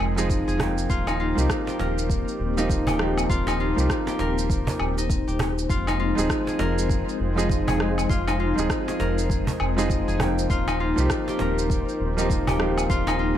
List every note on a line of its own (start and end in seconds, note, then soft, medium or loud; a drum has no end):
0.00 0.43 F1 medium
0.00 0.12 F3 medium
0.00 0.13 G#3 medium
0.00 0.90 G#3 medium
0.00 0.13 C4 medium
0.00 13.38 C4 medium
0.00 0.14 D#4 medium
0.00 0.17 D#4 medium
0.00 13.38 D#4 medium
0.00 0.89 F4 medium
0.00 2.84 F4 medium
0.00 0.14 G#4 loud
0.00 0.47 G#4 medium
0.00 1.52 A#4 medium
0.00 13.38 C5 medium
0.00 low woodblock medium
0.16 0.56 F3 medium
0.16 0.56 G#3 medium
0.16 0.57 C4 medium
0.16 1.07 D#4 medium
0.16 0.57 D#4 medium
0.16 0.57 G#4 loud
0.16 shaker medium
0.30 kick loud
0.30 shaker medium
0.48 0.87 F1 medium
0.48 1.74 G#4 medium
0.48 shaker soft
0.57 1.32 F3 medium
0.57 1.32 A#3 medium
0.57 1.33 C4 medium
0.57 1.33 D#4 medium
0.57 1.34 G5 medium
0.57 cajon bass loud
0.57 cross-stick medium
0.57 low woodblock medium
0.78 shaker medium
0.90 1.33 D#1 medium
0.90 7.26 A#3 medium
0.90 1.19 F4 medium
0.90 kick loud
0.90 shaker medium
1.07 2.57 D#4 medium
1.07 cajon slap medium
1.07 low woodblock medium
1.07 shaker soft
1.16 3.29 F4 medium
1.16 5.69 G4 medium
1.35 1.48 C2 medium
1.35 2.52 F3 medium
1.35 2.53 A#3 medium
1.35 2.53 C4 medium
1.35 2.54 D#4 medium
1.35 2.54 G4 loud
1.35 shaker medium
1.50 kick loud
1.50 cross-stick medium
1.50 shaker medium
1.67 2.87 G4 medium
1.67 cajon slap medium
1.67 shaker soft
1.79 2.23 D#1 medium
1.79 3.91 A#4 medium
1.79 cajon slap medium
1.99 shaker medium
2.10 kick loud
2.10 shaker medium
2.28 shaker soft
2.40 2.83 D#1 medium
2.57 2.96 F3 medium
2.57 2.97 A#3 medium
2.57 2.97 C4 medium
2.57 3.47 D#4 medium
2.57 2.97 D#4 medium
2.57 2.97 G4 loud
2.57 shaker medium
2.70 kick loud
2.70 shaker medium
2.87 3.27 D#1 medium
2.87 4.07 G4 medium
2.87 cajon bass medium
2.87 low woodblock medium
2.87 shaker soft
2.98 3.72 F3 medium
2.98 3.73 A#3 medium
2.98 3.73 C4 medium
2.98 3.74 D#4 medium
2.98 3.74 G4 medium
2.98 cross-stick medium
3.18 low woodblock medium
3.18 shaker medium
3.30 3.73 D#1 loud
3.30 3.60 F4 medium
3.30 kick loud
3.30 shaker medium
3.47 4.97 D#4 medium
3.47 cajon slap medium
3.47 low woodblock medium
3.47 shaker soft
3.60 5.69 F4 medium
3.76 3.88 C2 medium
3.76 4.93 F3 medium
3.76 4.93 A#3 medium
3.76 4.94 C4 medium
3.76 4.94 D#4 medium
3.76 shaker medium
3.80 4.95 G4 medium
3.90 kick loud
3.90 cross-stick medium
3.90 shaker medium
4.07 5.27 G4 medium
4.07 cajon slap medium
4.07 shaker soft
4.19 4.63 D#1 loud
4.19 6.32 A#4 medium
4.19 cajon slap medium
4.38 shaker medium
4.50 kick loud
4.50 shaker medium
4.67 cajon bass loud
4.67 shaker soft
4.80 5.23 D#1 medium
4.80 low woodblock medium
4.98 5.87 D#4 medium
4.98 shaker medium
5.10 kick loud
5.10 shaker medium
5.28 5.67 D#1 medium
5.28 6.53 G4 medium
5.28 shaker soft
5.39 cajon bass medium
5.39 cross-stick medium
5.39 low woodblock medium
5.58 shaker medium
5.70 6.13 F1 medium
5.70 10.50 G#3 medium
5.70 5.99 F4 medium
5.70 kick loud
5.70 shaker medium
5.87 7.37 D#4 loud
5.87 cajon slap medium
5.87 low woodblock medium
5.87 shaker soft
6.00 8.09 F4 medium
6.15 6.28 D#1 medium
6.15 7.32 F3 medium
6.15 7.33 G#3 medium
6.15 7.33 C4 medium
6.15 7.34 D#4 medium
6.15 7.34 G#4 loud
6.15 shaker medium
6.30 kick medium
6.30 cross-stick medium
6.30 shaker soft
6.47 7.67 G#4 medium
6.47 cajon slap medium
6.47 shaker soft
6.54 11.87 F4 medium
6.59 7.03 F1 medium
6.59 8.72 A#4 medium
6.59 cajon slap medium
6.79 shaker medium
6.89 kick loud
6.89 shaker soft
7.09 shaker soft
7.20 7.63 F1 medium
7.36 7.76 F3 medium
7.36 7.76 G#3 medium
7.36 7.76 C4 medium
7.36 8.27 D#4 medium
7.36 7.77 D#4 medium
7.36 7.77 G#4 loud
7.36 shaker medium
7.50 kick loud
7.50 shaker medium
7.67 8.07 F1 medium
7.67 8.87 G#4 medium
7.67 cajon bass medium
7.67 low woodblock medium
7.67 shaker soft
7.78 8.52 F3 medium
7.78 8.53 G#3 medium
7.78 8.53 C4 medium
7.78 8.53 D#4 medium
7.78 8.54 G#4 medium
7.78 cross-stick medium
7.98 low woodblock medium
7.98 shaker medium
8.09 8.53 F1 medium
8.09 8.39 F4 medium
8.09 kick loud
8.09 shaker soft
8.27 9.77 D#4 medium
8.27 cajon slap medium
8.27 low woodblock medium
8.27 shaker soft
8.40 10.50 F4 medium
8.55 8.68 D#1 medium
8.55 9.72 F3 medium
8.55 9.73 G#3 medium
8.55 9.73 C4 medium
8.55 9.74 D#4 medium
8.55 9.74 G#4 loud
8.55 shaker medium
8.70 kick medium
8.70 cross-stick medium
8.70 shaker soft
8.88 10.08 G#4 medium
8.88 cajon slap medium
8.88 shaker soft
9.00 9.43 F1 loud
9.00 11.12 A#4 medium
9.00 cajon slap medium
9.19 shaker medium
9.30 kick loud
9.30 shaker medium
9.47 cajon bass medium
9.47 shaker soft
9.60 10.03 F1 medium
9.60 low woodblock medium
9.76 10.16 F3 medium
9.76 10.16 G#3 medium
9.76 10.17 C4 medium
9.76 10.67 D#4 medium
9.76 10.17 D#4 medium
9.76 10.17 G#4 loud
9.76 shaker medium
9.90 kick loud
9.90 shaker medium
10.08 10.47 F1 medium
10.08 11.34 G#4 medium
10.08 shaker soft
10.18 10.92 F3 medium
10.18 10.93 A#3 medium
10.18 10.93 C4 medium
10.18 10.94 D#4 medium
10.18 cajon bass medium
10.18 cross-stick medium
10.18 low woodblock medium
10.22 10.94 G5 medium
10.39 shaker medium
10.50 10.93 D#1 medium
10.50 13.38 A#3 medium
10.50 10.80 F4 medium
10.50 kick medium
10.50 shaker soft
10.68 12.18 D#4 loud
10.68 cajon slap medium
10.68 low woodblock medium
10.68 shaker soft
10.80 12.89 F4 medium
10.80 13.38 G4 medium
10.96 11.08 C2 medium
10.96 12.12 F3 medium
10.96 12.13 A#3 medium
10.96 12.13 C4 medium
10.96 12.14 D#4 medium
10.96 shaker medium
11.00 12.14 G4 loud
11.10 kick medium
11.10 cross-stick medium
11.10 shaker medium
11.28 12.47 G4 medium
11.28 cajon slap medium
11.28 shaker soft
11.39 11.83 D#1 medium
11.39 13.38 A#4 medium
11.39 cajon slap medium
11.59 shaker medium
11.70 kick loud
11.70 shaker soft
11.89 shaker soft
12.00 12.43 D#1 medium
12.17 12.56 F3 medium
12.17 12.57 A#3 medium
12.17 12.57 C4 medium
12.17 12.57 D#4 medium
12.17 13.07 D#4 medium
12.17 12.57 G4 loud
12.17 shaker medium
12.30 kick medium
12.30 shaker medium
12.47 12.87 D#1 medium
12.47 13.38 G4 medium
12.47 cajon bass medium
12.47 low woodblock medium
12.47 shaker soft
12.58 13.32 F3 medium
12.58 13.33 A#3 medium
12.58 13.33 C4 medium
12.58 13.34 D#4 medium
12.58 13.34 G4 medium
12.58 cross-stick medium
12.78 low woodblock medium
12.78 shaker medium
12.90 13.33 D#1 medium
12.90 13.19 F4 loud
12.90 kick loud
12.90 shaker medium
13.07 13.38 D#4 loud
13.07 cajon slap medium
13.07 low woodblock medium
13.07 shaker soft
13.19 13.38 F4 medium